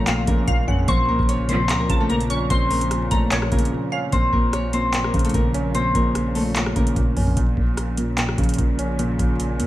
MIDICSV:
0, 0, Header, 1, 8, 480
1, 0, Start_track
1, 0, Key_signature, -5, "minor"
1, 0, Tempo, 405405
1, 1044, Time_signature, 4, 2, 24, 8
1, 11448, End_track
2, 0, Start_track
2, 0, Title_t, "Synth pluck"
2, 0, Program_c, 0, 84
2, 84, Note_on_c, 0, 77, 80
2, 535, Note_off_c, 0, 77, 0
2, 564, Note_on_c, 0, 77, 91
2, 792, Note_off_c, 0, 77, 0
2, 805, Note_on_c, 0, 78, 73
2, 1032, Note_off_c, 0, 78, 0
2, 1047, Note_on_c, 0, 85, 100
2, 1496, Note_off_c, 0, 85, 0
2, 2004, Note_on_c, 0, 82, 85
2, 2232, Note_off_c, 0, 82, 0
2, 2244, Note_on_c, 0, 81, 84
2, 2472, Note_off_c, 0, 81, 0
2, 2480, Note_on_c, 0, 82, 81
2, 2709, Note_off_c, 0, 82, 0
2, 2726, Note_on_c, 0, 85, 82
2, 2953, Note_off_c, 0, 85, 0
2, 2962, Note_on_c, 0, 84, 110
2, 3639, Note_off_c, 0, 84, 0
2, 3684, Note_on_c, 0, 82, 80
2, 3912, Note_off_c, 0, 82, 0
2, 3923, Note_on_c, 0, 73, 91
2, 4600, Note_off_c, 0, 73, 0
2, 4641, Note_on_c, 0, 77, 84
2, 4870, Note_off_c, 0, 77, 0
2, 11448, End_track
3, 0, Start_track
3, 0, Title_t, "Harp"
3, 0, Program_c, 1, 46
3, 0, Note_on_c, 1, 57, 70
3, 0, Note_on_c, 1, 60, 82
3, 0, Note_on_c, 1, 69, 81
3, 0, Note_on_c, 1, 72, 94
3, 323, Note_on_c, 1, 70, 76
3, 332, Note_on_c, 1, 58, 59
3, 394, Note_off_c, 1, 57, 0
3, 394, Note_off_c, 1, 69, 0
3, 1039, Note_off_c, 1, 72, 0
3, 1043, Note_on_c, 1, 72, 109
3, 1048, Note_off_c, 1, 60, 0
3, 1053, Note_on_c, 1, 60, 83
3, 1278, Note_off_c, 1, 70, 0
3, 1283, Note_on_c, 1, 70, 87
3, 1288, Note_off_c, 1, 58, 0
3, 1292, Note_on_c, 1, 58, 68
3, 1523, Note_on_c, 1, 73, 86
3, 1533, Note_on_c, 1, 61, 70
3, 1594, Note_off_c, 1, 60, 0
3, 1594, Note_off_c, 1, 72, 0
3, 1763, Note_on_c, 1, 72, 83
3, 1773, Note_on_c, 1, 60, 70
3, 1834, Note_off_c, 1, 61, 0
3, 1834, Note_off_c, 1, 73, 0
3, 2124, Note_off_c, 1, 70, 0
3, 2129, Note_on_c, 1, 70, 75
3, 2135, Note_off_c, 1, 58, 0
3, 2139, Note_on_c, 1, 58, 61
3, 2371, Note_on_c, 1, 69, 84
3, 2381, Note_on_c, 1, 57, 59
3, 2442, Note_off_c, 1, 58, 0
3, 2442, Note_off_c, 1, 70, 0
3, 2483, Note_on_c, 1, 70, 80
3, 2492, Note_on_c, 1, 58, 69
3, 2554, Note_off_c, 1, 57, 0
3, 2554, Note_off_c, 1, 69, 0
3, 2959, Note_off_c, 1, 72, 0
3, 2963, Note_on_c, 1, 72, 95
3, 2968, Note_off_c, 1, 60, 0
3, 2973, Note_on_c, 1, 60, 80
3, 3197, Note_off_c, 1, 70, 0
3, 3201, Note_on_c, 1, 70, 84
3, 3206, Note_off_c, 1, 58, 0
3, 3211, Note_on_c, 1, 58, 67
3, 3683, Note_on_c, 1, 69, 83
3, 3692, Note_on_c, 1, 57, 61
3, 3754, Note_off_c, 1, 58, 0
3, 3754, Note_off_c, 1, 70, 0
3, 4163, Note_on_c, 1, 70, 80
3, 4173, Note_on_c, 1, 58, 58
3, 4234, Note_off_c, 1, 57, 0
3, 4234, Note_off_c, 1, 69, 0
3, 4878, Note_off_c, 1, 72, 0
3, 4883, Note_on_c, 1, 72, 102
3, 4888, Note_off_c, 1, 60, 0
3, 4892, Note_on_c, 1, 60, 75
3, 5119, Note_off_c, 1, 70, 0
3, 5124, Note_on_c, 1, 70, 84
3, 5129, Note_off_c, 1, 58, 0
3, 5134, Note_on_c, 1, 58, 61
3, 5365, Note_on_c, 1, 73, 85
3, 5374, Note_on_c, 1, 61, 67
3, 5436, Note_off_c, 1, 60, 0
3, 5436, Note_off_c, 1, 72, 0
3, 5604, Note_on_c, 1, 72, 85
3, 5614, Note_on_c, 1, 60, 70
3, 5676, Note_off_c, 1, 61, 0
3, 5676, Note_off_c, 1, 73, 0
3, 5965, Note_off_c, 1, 70, 0
3, 5970, Note_on_c, 1, 70, 71
3, 5975, Note_off_c, 1, 58, 0
3, 5979, Note_on_c, 1, 58, 58
3, 6212, Note_on_c, 1, 69, 74
3, 6221, Note_on_c, 1, 57, 62
3, 6283, Note_off_c, 1, 58, 0
3, 6283, Note_off_c, 1, 70, 0
3, 6324, Note_on_c, 1, 70, 80
3, 6334, Note_on_c, 1, 58, 58
3, 6395, Note_off_c, 1, 57, 0
3, 6395, Note_off_c, 1, 69, 0
3, 6798, Note_off_c, 1, 72, 0
3, 6803, Note_on_c, 1, 72, 93
3, 6807, Note_off_c, 1, 60, 0
3, 6812, Note_on_c, 1, 60, 79
3, 7039, Note_off_c, 1, 70, 0
3, 7044, Note_on_c, 1, 70, 77
3, 7048, Note_off_c, 1, 58, 0
3, 7053, Note_on_c, 1, 58, 63
3, 7524, Note_on_c, 1, 69, 77
3, 7534, Note_on_c, 1, 57, 65
3, 7595, Note_off_c, 1, 58, 0
3, 7595, Note_off_c, 1, 70, 0
3, 8003, Note_on_c, 1, 70, 79
3, 8012, Note_on_c, 1, 58, 56
3, 8074, Note_off_c, 1, 57, 0
3, 8074, Note_off_c, 1, 69, 0
3, 9146, Note_off_c, 1, 72, 0
3, 10364, Note_off_c, 1, 60, 0
3, 10514, Note_off_c, 1, 70, 0
3, 11448, Note_off_c, 1, 58, 0
3, 11448, End_track
4, 0, Start_track
4, 0, Title_t, "String section"
4, 0, Program_c, 2, 48
4, 0, Note_on_c, 2, 46, 85
4, 0, Note_on_c, 2, 49, 77
4, 0, Note_on_c, 2, 53, 74
4, 996, Note_off_c, 2, 46, 0
4, 1043, Note_on_c, 2, 46, 84
4, 4836, Note_off_c, 2, 49, 0
4, 4836, Note_off_c, 2, 53, 0
4, 4845, Note_off_c, 2, 46, 0
4, 4884, Note_on_c, 2, 46, 82
4, 4884, Note_on_c, 2, 49, 76
4, 4884, Note_on_c, 2, 53, 68
4, 8685, Note_off_c, 2, 46, 0
4, 8685, Note_off_c, 2, 49, 0
4, 8685, Note_off_c, 2, 53, 0
4, 8723, Note_on_c, 2, 46, 85
4, 8723, Note_on_c, 2, 53, 71
4, 8724, Note_on_c, 2, 49, 76
4, 11448, Note_off_c, 2, 46, 0
4, 11448, Note_off_c, 2, 49, 0
4, 11448, Note_off_c, 2, 53, 0
4, 11448, End_track
5, 0, Start_track
5, 0, Title_t, "Grand piano"
5, 0, Program_c, 3, 0
5, 0, Control_c, 3, 64, 127
5, 0, Note_on_c, 3, 46, 71
5, 0, Note_on_c, 3, 49, 88
5, 0, Note_on_c, 3, 61, 92
5, 83, Note_off_c, 3, 46, 0
5, 83, Note_on_c, 3, 46, 93
5, 324, Note_off_c, 3, 49, 0
5, 324, Note_on_c, 3, 49, 82
5, 546, Note_off_c, 3, 46, 0
5, 564, Note_on_c, 3, 46, 83
5, 803, Note_off_c, 3, 61, 0
5, 803, Note_on_c, 3, 61, 86
5, 1025, Note_off_c, 3, 46, 0
5, 1043, Note_on_c, 3, 46, 95
5, 1044, Note_off_c, 3, 49, 0
5, 1044, Note_off_c, 3, 61, 0
5, 1058, Control_c, 3, 64, 0
5, 1265, Control_c, 3, 64, 127
5, 1745, Note_off_c, 3, 46, 0
5, 1763, Note_on_c, 3, 46, 80
5, 1985, Note_off_c, 3, 46, 0
5, 2003, Note_on_c, 3, 46, 92
5, 2243, Note_on_c, 3, 49, 84
5, 2465, Note_off_c, 3, 46, 0
5, 2483, Note_on_c, 3, 46, 83
5, 2723, Note_on_c, 3, 61, 92
5, 2946, Note_off_c, 3, 46, 0
5, 2964, Note_on_c, 3, 46, 96
5, 3443, Note_off_c, 3, 49, 0
5, 3666, Note_off_c, 3, 46, 0
5, 3684, Note_on_c, 3, 46, 83
5, 3906, Note_off_c, 3, 46, 0
5, 3923, Note_off_c, 3, 61, 0
5, 3924, Note_on_c, 3, 46, 94
5, 4164, Note_on_c, 3, 49, 86
5, 4387, Note_off_c, 3, 46, 0
5, 4404, Note_on_c, 3, 46, 85
5, 4644, Note_on_c, 3, 61, 89
5, 4866, Note_off_c, 3, 46, 0
5, 4884, Note_off_c, 3, 49, 0
5, 4884, Note_off_c, 3, 61, 0
5, 4884, Note_on_c, 3, 46, 96
5, 4900, Control_c, 3, 64, 0
5, 5126, Control_c, 3, 64, 127
5, 5586, Note_off_c, 3, 46, 0
5, 5604, Note_on_c, 3, 46, 79
5, 5826, Note_off_c, 3, 46, 0
5, 5843, Note_on_c, 3, 46, 92
5, 6084, Note_on_c, 3, 49, 84
5, 6305, Note_off_c, 3, 46, 0
5, 6323, Note_on_c, 3, 46, 82
5, 6562, Note_on_c, 3, 61, 91
5, 6785, Note_off_c, 3, 46, 0
5, 6803, Note_on_c, 3, 46, 89
5, 7284, Note_off_c, 3, 49, 0
5, 7506, Note_off_c, 3, 46, 0
5, 7523, Note_on_c, 3, 46, 72
5, 7745, Note_off_c, 3, 46, 0
5, 7762, Note_on_c, 3, 46, 91
5, 7763, Note_off_c, 3, 61, 0
5, 8003, Note_on_c, 3, 49, 78
5, 8225, Note_off_c, 3, 46, 0
5, 8243, Note_on_c, 3, 46, 83
5, 8483, Note_on_c, 3, 61, 79
5, 8706, Note_off_c, 3, 46, 0
5, 8723, Note_off_c, 3, 49, 0
5, 8723, Note_off_c, 3, 61, 0
5, 8724, Note_on_c, 3, 46, 94
5, 8739, Control_c, 3, 64, 0
5, 8976, Control_c, 3, 64, 127
5, 9426, Note_off_c, 3, 46, 0
5, 9444, Note_on_c, 3, 46, 79
5, 9666, Note_off_c, 3, 46, 0
5, 9684, Note_on_c, 3, 46, 86
5, 9923, Note_on_c, 3, 49, 85
5, 10146, Note_off_c, 3, 46, 0
5, 10164, Note_on_c, 3, 46, 82
5, 10404, Note_on_c, 3, 61, 88
5, 10626, Note_off_c, 3, 46, 0
5, 10644, Note_on_c, 3, 46, 96
5, 11123, Note_off_c, 3, 49, 0
5, 11346, Note_off_c, 3, 46, 0
5, 11364, Note_on_c, 3, 46, 84
5, 11448, Note_off_c, 3, 46, 0
5, 11448, Note_off_c, 3, 61, 0
5, 11448, End_track
6, 0, Start_track
6, 0, Title_t, "String section"
6, 0, Program_c, 4, 48
6, 1043, Note_on_c, 4, 53, 89
6, 1044, Note_on_c, 4, 37, 78
6, 1044, Note_on_c, 4, 46, 83
6, 1152, Note_off_c, 4, 37, 0
6, 1152, Note_off_c, 4, 46, 0
6, 1152, Note_off_c, 4, 53, 0
6, 1763, Note_on_c, 4, 37, 97
6, 1764, Note_on_c, 4, 46, 93
6, 1764, Note_on_c, 4, 53, 115
6, 2220, Note_off_c, 4, 37, 0
6, 2220, Note_off_c, 4, 46, 0
6, 2220, Note_off_c, 4, 53, 0
6, 11448, End_track
7, 0, Start_track
7, 0, Title_t, "808-style bass"
7, 0, Program_c, 5, 38
7, 0, Note_on_c, 5, 34, 101
7, 305, Note_off_c, 5, 34, 0
7, 324, Note_on_c, 5, 34, 109
7, 554, Note_off_c, 5, 34, 0
7, 562, Note_on_c, 5, 34, 108
7, 793, Note_off_c, 5, 34, 0
7, 804, Note_on_c, 5, 41, 105
7, 1034, Note_off_c, 5, 41, 0
7, 1043, Note_on_c, 5, 34, 110
7, 1283, Note_on_c, 5, 36, 102
7, 1301, Note_off_c, 5, 34, 0
7, 1404, Note_off_c, 5, 36, 0
7, 1411, Note_on_c, 5, 34, 107
7, 2003, Note_on_c, 5, 37, 101
7, 2021, Note_off_c, 5, 34, 0
7, 2232, Note_off_c, 5, 37, 0
7, 2244, Note_on_c, 5, 34, 100
7, 2935, Note_off_c, 5, 34, 0
7, 2964, Note_on_c, 5, 34, 113
7, 3655, Note_off_c, 5, 34, 0
7, 3684, Note_on_c, 5, 34, 101
7, 4145, Note_off_c, 5, 34, 0
7, 4164, Note_on_c, 5, 34, 109
7, 4404, Note_off_c, 5, 34, 0
7, 4884, Note_on_c, 5, 34, 115
7, 5114, Note_off_c, 5, 34, 0
7, 5125, Note_on_c, 5, 34, 105
7, 6046, Note_off_c, 5, 34, 0
7, 6084, Note_on_c, 5, 34, 106
7, 6315, Note_off_c, 5, 34, 0
7, 6323, Note_on_c, 5, 34, 102
7, 7014, Note_off_c, 5, 34, 0
7, 7044, Note_on_c, 5, 34, 99
7, 7966, Note_off_c, 5, 34, 0
7, 8004, Note_on_c, 5, 34, 99
7, 8234, Note_off_c, 5, 34, 0
7, 8242, Note_on_c, 5, 34, 100
7, 8473, Note_off_c, 5, 34, 0
7, 8484, Note_on_c, 5, 41, 101
7, 8714, Note_off_c, 5, 41, 0
7, 8724, Note_on_c, 5, 34, 113
7, 8954, Note_off_c, 5, 34, 0
7, 8965, Note_on_c, 5, 34, 106
7, 9886, Note_off_c, 5, 34, 0
7, 9924, Note_on_c, 5, 34, 103
7, 10154, Note_off_c, 5, 34, 0
7, 10163, Note_on_c, 5, 34, 100
7, 10855, Note_off_c, 5, 34, 0
7, 10885, Note_on_c, 5, 34, 102
7, 11364, Note_on_c, 5, 41, 95
7, 11382, Note_off_c, 5, 34, 0
7, 11448, Note_off_c, 5, 41, 0
7, 11448, End_track
8, 0, Start_track
8, 0, Title_t, "Drums"
8, 83, Note_on_c, 9, 39, 118
8, 84, Note_on_c, 9, 42, 87
8, 202, Note_off_c, 9, 39, 0
8, 203, Note_off_c, 9, 42, 0
8, 324, Note_on_c, 9, 36, 102
8, 324, Note_on_c, 9, 42, 76
8, 442, Note_off_c, 9, 36, 0
8, 443, Note_off_c, 9, 42, 0
8, 562, Note_on_c, 9, 36, 93
8, 563, Note_on_c, 9, 42, 66
8, 681, Note_off_c, 9, 36, 0
8, 682, Note_off_c, 9, 42, 0
8, 804, Note_on_c, 9, 36, 97
8, 922, Note_off_c, 9, 36, 0
8, 1043, Note_on_c, 9, 36, 106
8, 1043, Note_on_c, 9, 42, 81
8, 1161, Note_off_c, 9, 42, 0
8, 1162, Note_off_c, 9, 36, 0
8, 1411, Note_on_c, 9, 36, 100
8, 1525, Note_on_c, 9, 42, 92
8, 1529, Note_off_c, 9, 36, 0
8, 1643, Note_off_c, 9, 42, 0
8, 1761, Note_on_c, 9, 42, 80
8, 1880, Note_off_c, 9, 42, 0
8, 2003, Note_on_c, 9, 39, 117
8, 2004, Note_on_c, 9, 42, 89
8, 2121, Note_off_c, 9, 39, 0
8, 2122, Note_off_c, 9, 42, 0
8, 2244, Note_on_c, 9, 36, 101
8, 2244, Note_on_c, 9, 42, 82
8, 2362, Note_off_c, 9, 36, 0
8, 2362, Note_off_c, 9, 42, 0
8, 2483, Note_on_c, 9, 42, 42
8, 2601, Note_off_c, 9, 42, 0
8, 2610, Note_on_c, 9, 42, 71
8, 2724, Note_off_c, 9, 42, 0
8, 2724, Note_on_c, 9, 42, 85
8, 2842, Note_off_c, 9, 42, 0
8, 2963, Note_on_c, 9, 42, 82
8, 2964, Note_on_c, 9, 36, 102
8, 3082, Note_off_c, 9, 36, 0
8, 3082, Note_off_c, 9, 42, 0
8, 3204, Note_on_c, 9, 42, 39
8, 3205, Note_on_c, 9, 46, 72
8, 3322, Note_off_c, 9, 42, 0
8, 3324, Note_off_c, 9, 46, 0
8, 3331, Note_on_c, 9, 42, 69
8, 3444, Note_on_c, 9, 37, 70
8, 3446, Note_off_c, 9, 42, 0
8, 3446, Note_on_c, 9, 42, 91
8, 3563, Note_off_c, 9, 37, 0
8, 3564, Note_off_c, 9, 42, 0
8, 3682, Note_on_c, 9, 42, 90
8, 3684, Note_on_c, 9, 36, 90
8, 3801, Note_off_c, 9, 42, 0
8, 3802, Note_off_c, 9, 36, 0
8, 3924, Note_on_c, 9, 39, 120
8, 3925, Note_on_c, 9, 42, 87
8, 4042, Note_off_c, 9, 39, 0
8, 4043, Note_off_c, 9, 42, 0
8, 4051, Note_on_c, 9, 37, 92
8, 4164, Note_on_c, 9, 36, 105
8, 4164, Note_on_c, 9, 42, 70
8, 4169, Note_off_c, 9, 37, 0
8, 4244, Note_off_c, 9, 42, 0
8, 4244, Note_on_c, 9, 42, 66
8, 4283, Note_off_c, 9, 36, 0
8, 4324, Note_off_c, 9, 42, 0
8, 4324, Note_on_c, 9, 42, 66
8, 4442, Note_off_c, 9, 42, 0
8, 4883, Note_on_c, 9, 42, 77
8, 4884, Note_on_c, 9, 36, 102
8, 5002, Note_off_c, 9, 36, 0
8, 5002, Note_off_c, 9, 42, 0
8, 5125, Note_on_c, 9, 36, 90
8, 5243, Note_off_c, 9, 36, 0
8, 5364, Note_on_c, 9, 37, 67
8, 5366, Note_on_c, 9, 42, 88
8, 5483, Note_off_c, 9, 37, 0
8, 5484, Note_off_c, 9, 42, 0
8, 5602, Note_on_c, 9, 42, 80
8, 5721, Note_off_c, 9, 42, 0
8, 5844, Note_on_c, 9, 39, 119
8, 5845, Note_on_c, 9, 42, 89
8, 5962, Note_off_c, 9, 39, 0
8, 5963, Note_off_c, 9, 42, 0
8, 5971, Note_on_c, 9, 37, 86
8, 6084, Note_on_c, 9, 36, 97
8, 6084, Note_on_c, 9, 42, 48
8, 6089, Note_off_c, 9, 37, 0
8, 6147, Note_off_c, 9, 42, 0
8, 6147, Note_on_c, 9, 42, 58
8, 6203, Note_off_c, 9, 36, 0
8, 6211, Note_off_c, 9, 42, 0
8, 6211, Note_on_c, 9, 42, 69
8, 6267, Note_off_c, 9, 42, 0
8, 6267, Note_on_c, 9, 42, 80
8, 6323, Note_on_c, 9, 36, 90
8, 6324, Note_off_c, 9, 42, 0
8, 6324, Note_on_c, 9, 42, 67
8, 6441, Note_off_c, 9, 36, 0
8, 6443, Note_off_c, 9, 42, 0
8, 6564, Note_on_c, 9, 42, 82
8, 6682, Note_off_c, 9, 42, 0
8, 6803, Note_on_c, 9, 42, 77
8, 6921, Note_off_c, 9, 42, 0
8, 7044, Note_on_c, 9, 36, 88
8, 7045, Note_on_c, 9, 42, 63
8, 7163, Note_off_c, 9, 36, 0
8, 7163, Note_off_c, 9, 42, 0
8, 7284, Note_on_c, 9, 37, 65
8, 7285, Note_on_c, 9, 42, 84
8, 7402, Note_off_c, 9, 37, 0
8, 7403, Note_off_c, 9, 42, 0
8, 7521, Note_on_c, 9, 46, 60
8, 7640, Note_off_c, 9, 46, 0
8, 7763, Note_on_c, 9, 39, 117
8, 7764, Note_on_c, 9, 42, 87
8, 7881, Note_off_c, 9, 39, 0
8, 7882, Note_off_c, 9, 42, 0
8, 7890, Note_on_c, 9, 37, 85
8, 8003, Note_on_c, 9, 42, 65
8, 8004, Note_on_c, 9, 36, 100
8, 8008, Note_off_c, 9, 37, 0
8, 8122, Note_off_c, 9, 36, 0
8, 8122, Note_off_c, 9, 42, 0
8, 8131, Note_on_c, 9, 42, 65
8, 8243, Note_on_c, 9, 36, 90
8, 8244, Note_off_c, 9, 42, 0
8, 8244, Note_on_c, 9, 42, 64
8, 8361, Note_off_c, 9, 36, 0
8, 8362, Note_off_c, 9, 42, 0
8, 8484, Note_on_c, 9, 36, 95
8, 8484, Note_on_c, 9, 46, 60
8, 8602, Note_off_c, 9, 36, 0
8, 8602, Note_off_c, 9, 46, 0
8, 8611, Note_on_c, 9, 36, 106
8, 8723, Note_on_c, 9, 42, 77
8, 8724, Note_off_c, 9, 36, 0
8, 8724, Note_on_c, 9, 36, 101
8, 8841, Note_off_c, 9, 42, 0
8, 8842, Note_off_c, 9, 36, 0
8, 8964, Note_on_c, 9, 36, 90
8, 9083, Note_off_c, 9, 36, 0
8, 9204, Note_on_c, 9, 37, 66
8, 9205, Note_on_c, 9, 42, 88
8, 9323, Note_off_c, 9, 37, 0
8, 9324, Note_off_c, 9, 42, 0
8, 9442, Note_on_c, 9, 42, 80
8, 9561, Note_off_c, 9, 42, 0
8, 9683, Note_on_c, 9, 39, 112
8, 9685, Note_on_c, 9, 42, 90
8, 9802, Note_off_c, 9, 39, 0
8, 9803, Note_off_c, 9, 42, 0
8, 9811, Note_on_c, 9, 37, 91
8, 9924, Note_on_c, 9, 36, 103
8, 9924, Note_on_c, 9, 42, 48
8, 9929, Note_off_c, 9, 37, 0
8, 9987, Note_off_c, 9, 42, 0
8, 9987, Note_on_c, 9, 42, 59
8, 10043, Note_off_c, 9, 36, 0
8, 10051, Note_off_c, 9, 42, 0
8, 10051, Note_on_c, 9, 42, 70
8, 10107, Note_off_c, 9, 42, 0
8, 10107, Note_on_c, 9, 42, 81
8, 10163, Note_on_c, 9, 36, 89
8, 10164, Note_off_c, 9, 42, 0
8, 10164, Note_on_c, 9, 42, 64
8, 10281, Note_off_c, 9, 36, 0
8, 10282, Note_off_c, 9, 42, 0
8, 10404, Note_on_c, 9, 42, 80
8, 10522, Note_off_c, 9, 42, 0
8, 10643, Note_on_c, 9, 42, 79
8, 10762, Note_off_c, 9, 42, 0
8, 10885, Note_on_c, 9, 36, 86
8, 10885, Note_on_c, 9, 42, 65
8, 11003, Note_off_c, 9, 36, 0
8, 11004, Note_off_c, 9, 42, 0
8, 11126, Note_on_c, 9, 42, 88
8, 11244, Note_off_c, 9, 42, 0
8, 11362, Note_on_c, 9, 42, 86
8, 11448, Note_off_c, 9, 42, 0
8, 11448, End_track
0, 0, End_of_file